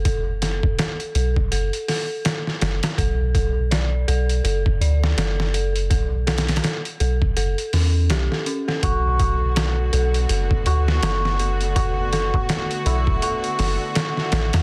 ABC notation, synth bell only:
X:1
M:4/4
L:1/16
Q:"Swing 16ths" 1/4=82
K:Bm
V:1 name="Synth bell"
A z A2 A2 A z A2 A2 A z A2 | A2 A z d2 A2 A z d2 A2 A z | A2 A2 A z A2 A z C z G A C A | A2 A z A2 A2 A z A2 A2 A z |
A2 A2 A z A2 A2 A z A2 A2 |]